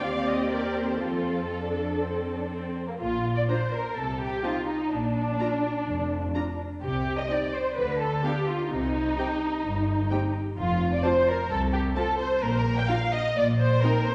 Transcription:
0.00 0.98 D#2 soft
0.00 0.98 C4 soft
0.00 0.49 D5 soft
0.00 0.26 F5 soft
0.04 1.00 G4 soft
0.27 0.51 D#5 soft
0.50 1.00 A#4 soft
0.50 0.74 D5 soft
0.75 0.99 C5 soft
0.99 2.80 F2 soft
0.99 1.44 C4 soft
0.99 1.44 F4 soft
0.99 2.72 A4 soft
0.99 2.75 A4 soft
1.49 1.61 F4 soft
1.62 1.99 D4 soft
2.00 2.37 C4 soft
2.37 2.50 D4 soft
2.50 2.87 C4 soft
2.87 2.92 A#3 soft
2.98 3.41 A#1 soft
2.98 3.41 A#2 soft
2.98 3.33 F4 soft
3.36 3.41 D5 soft
3.48 3.57 D4 soft
3.48 3.57 F4 soft
3.48 3.72 C5 soft
3.48 3.57 A#5 soft
3.73 3.96 A#4 soft
3.95 4.36 C2 soft
3.95 4.36 C3 soft
3.95 4.20 A4 soft
4.20 4.44 G4 soft
4.44 4.52 C4 soft
4.44 4.52 D#4 soft
4.44 4.68 F4 soft
4.44 4.52 A5 soft
4.67 4.91 D#4 soft
4.92 5.33 A#1 soft
4.92 5.32 A#2 soft
4.92 6.59 D4 medium
5.40 5.48 D4 soft
5.40 5.48 F4 soft
5.40 5.48 A#5 soft
5.87 6.27 F1 soft
5.87 6.27 F2 soft
6.35 6.43 D4 soft
6.35 6.43 F4 soft
6.35 6.43 A#5 soft
6.82 7.22 C2 soft
6.82 7.22 C3 soft
6.82 7.16 G4 medium
7.19 7.31 D#5 soft
7.29 7.38 C4 soft
7.29 7.38 D#4 soft
7.29 7.54 D5 medium
7.29 7.38 G5 soft
7.54 7.78 C5 soft
7.77 8.16 D2 soft
7.77 8.16 D3 soft
7.77 8.01 B4 medium
8.01 8.24 A4 soft
8.24 8.32 B3 soft
8.24 8.32 D4 soft
8.24 8.48 G4 soft
8.24 8.33 F5 soft
8.48 8.72 F4 soft
8.71 9.11 C2 soft
8.71 9.11 C3 soft
8.71 10.32 D#4 medium
9.19 9.27 C4 soft
9.19 9.27 G4 soft
9.19 9.27 G5 soft
9.65 10.03 G1 soft
9.65 10.03 G2 soft
10.10 10.19 C4 soft
10.10 10.19 G4 soft
10.10 10.18 G5 soft
10.56 10.96 F1 soft
10.56 10.95 F2 soft
10.56 10.90 F4 medium
10.93 11.04 D5 medium
11.03 11.12 C4 soft
11.03 11.11 F4 soft
11.03 11.27 C5 medium
11.03 11.11 A5 soft
11.27 11.50 A#4 medium
11.49 11.88 C2 soft
11.49 11.59 A4 medium
11.74 11.82 G4 medium
11.96 12.04 C4 soft
11.96 12.04 F4 soft
11.96 12.19 A4 medium
11.96 12.04 A5 soft
12.19 12.42 C5 medium
12.42 12.82 A#1 medium
12.42 12.81 A#2 medium
12.42 12.50 A#4 medium
12.49 12.56 C5 medium
12.56 12.78 A#4 medium
12.78 12.90 G5 medium
12.89 12.97 D4 soft
12.89 12.97 F4 soft
12.89 13.13 F5 medium
12.89 12.97 A#5 soft
13.12 13.36 D#5 medium
13.36 13.76 A#1 medium
13.36 13.76 A#2 medium
13.36 13.45 D5 medium
13.60 13.83 C5 medium
13.83 13.92 C4 soft
13.83 13.92 D#4 soft
13.83 14.07 A#4 medium
13.83 13.92 G5 soft
14.06 14.15 C5 medium

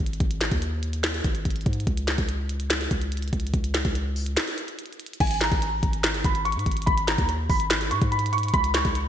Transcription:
0.00 0.20 G#1 loud
0.06 closed hi-hat medium
0.13 closed hi-hat medium
0.20 0.50 G#1 loud
0.20 kick loud
0.20 closed hi-hat medium
0.31 closed hi-hat medium
0.41 snare loud
0.41 clap medium
0.41 closed hi-hat soft
0.52 1.22 D#2 loud
0.52 kick medium
0.52 closed hi-hat medium
0.62 closed hi-hat medium
0.83 closed hi-hat medium
0.93 closed hi-hat medium
1.04 snare loud
1.04 clap loud
1.04 closed hi-hat medium
1.14 closed hi-hat medium
1.24 1.44 G#1 loud
1.24 kick loud
1.24 closed hi-hat medium
1.35 closed hi-hat medium
1.45 1.65 G#1 loud
1.45 kick medium
1.45 closed hi-hat medium
1.51 closed hi-hat medium
1.56 closed hi-hat medium
1.61 closed hi-hat soft
1.66 1.86 G#2 loud
1.66 kick medium
1.66 closed hi-hat medium
1.73 closed hi-hat medium
1.80 closed hi-hat medium
1.87 2.17 C#2 loud
1.87 kick loud
1.87 closed hi-hat medium
1.97 closed hi-hat medium
2.08 snare loud
2.08 clap medium
2.08 closed hi-hat soft
2.18 2.88 C#2 loud
2.18 kick loud
2.18 closed hi-hat medium
2.29 closed hi-hat medium
2.49 closed hi-hat medium
2.60 closed hi-hat medium
2.70 snare loud
2.70 clap loud
2.70 closed hi-hat medium
2.81 closed hi-hat medium
2.91 3.31 C#2 loud
2.91 kick loud
2.91 closed hi-hat medium
3.02 closed hi-hat medium
3.12 closed hi-hat medium
3.17 closed hi-hat medium
3.22 closed hi-hat medium
3.28 closed hi-hat soft
3.33 3.53 C#2 loud
3.33 kick medium
3.33 closed hi-hat medium
3.40 closed hi-hat medium
3.47 closed hi-hat medium
3.54 3.84 C#2 loud
3.54 kick loud
3.54 closed hi-hat medium
3.64 closed hi-hat medium
3.74 snare loud
3.74 clap medium
3.74 closed hi-hat soft
3.85 4.37 C#2 loud
3.85 kick loud
3.85 closed hi-hat medium
3.95 closed hi-hat medium
4.16 open hi-hat medium
4.26 closed hi-hat medium
4.37 snare loud
4.37 clap loud
4.37 closed hi-hat medium
4.48 closed hi-hat medium
4.58 closed hi-hat medium
4.68 closed hi-hat medium
4.79 closed hi-hat medium
4.86 closed hi-hat medium
4.93 closed hi-hat soft
5.00 closed hi-hat medium
5.06 closed hi-hat medium
5.13 closed hi-hat medium
5.20 5.50 G#1 loud
5.20 5.37 G#5 loud
5.20 kick loud
5.20 closed hi-hat medium
5.20 crash loud
5.27 closed hi-hat medium
5.31 closed hi-hat medium
5.34 closed hi-hat medium
5.41 6.21 A#5 medium
5.41 snare loud
5.41 clap medium
5.41 closed hi-hat soft
5.52 5.82 G#1 loud
5.52 kick loud
5.52 closed hi-hat medium
5.62 closed hi-hat medium
5.83 6.16 G#1 loud
5.83 kick loud
5.83 closed hi-hat medium
5.93 closed hi-hat medium
6.04 snare loud
6.04 clap loud
6.04 closed hi-hat medium
6.14 6.24 G1 loud
6.14 closed hi-hat medium
6.24 6.57 G#1 loud
6.24 6.41 B5 medium
6.24 kick loud
6.24 closed hi-hat medium
6.35 closed hi-hat medium
6.45 6.61 C#6 medium
6.45 closed hi-hat medium
6.52 6.66 G#2 loud
6.52 closed hi-hat medium
6.59 closed hi-hat medium
6.66 6.86 G#1 loud
6.66 kick medium
6.66 closed hi-hat medium
6.72 closed hi-hat medium
6.77 closed hi-hat medium
6.82 closed hi-hat medium
6.86 7.17 G#1 loud
6.86 7.03 B5 loud
6.86 kick loud
6.86 closed hi-hat medium
6.98 closed hi-hat medium
7.08 7.24 A#5 medium
7.08 snare loud
7.08 clap medium
7.08 closed hi-hat soft
7.18 7.48 D#2 loud
7.18 kick loud
7.18 closed hi-hat medium
7.29 closed hi-hat medium
7.50 7.93 G#1 loud
7.50 7.89 B5 medium
7.50 kick loud
7.50 open hi-hat medium
7.60 closed hi-hat medium
7.70 snare loud
7.70 clap loud
7.70 closed hi-hat medium
7.81 closed hi-hat medium
7.91 8.01 G#2 loud
7.91 8.07 C#6 medium
7.91 closed hi-hat medium
8.02 8.52 G#2 loud
8.02 kick loud
8.02 closed hi-hat medium
8.12 8.28 B5 medium
8.12 closed hi-hat medium
8.19 closed hi-hat medium
8.26 closed hi-hat medium
8.33 8.49 C#6 medium
8.33 closed hi-hat medium
8.38 closed hi-hat medium
8.43 closed hi-hat medium
8.48 closed hi-hat medium
8.54 8.84 C#2 loud
8.54 8.70 B5 loud
8.54 kick loud
8.54 closed hi-hat medium
8.64 closed hi-hat medium
8.74 9.08 C#6 medium
8.74 snare loud
8.74 clap medium
8.74 closed hi-hat medium
8.85 9.08 C#2 loud
8.85 kick loud
8.85 closed hi-hat medium
8.95 closed hi-hat medium

